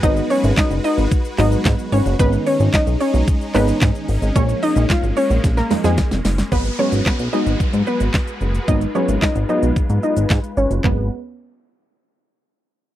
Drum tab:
HH |x-o-x-o-x-o-x-o-|x-o-x-o-x-o-x-o-|x-o-x-o-x-o-x-o-|-x-x-x-x-x-x-x-x|
SH |xxxxxxxxxxxxxxxx|xxxxxxxxxxxxxxxx|xxxxxxxxxxxxxxxx|xxxxxxxxxxxxxxxx|
CP |----x-----x-x---|----x-----x-x---|----x-----------|----x-------x---|
SD |----o-------o---|----o-------o---|----o---oooooooo|----o-------o---|
FT |----------------|----------------|----------------|----------------|
BD |o---o---o---o---|o---o---o---o---|o---o---o---o---|o---o---o---o---|

HH |-x-x-x-x-x-x-x-x|----------------|
SH |xxxxxxxxxxxxxxxx|----------------|
CP |----x-------x---|x---------------|
SD |----o-------o---|----------------|
FT |----------------|o---------------|
BD |o---o---o---o---|o---------------|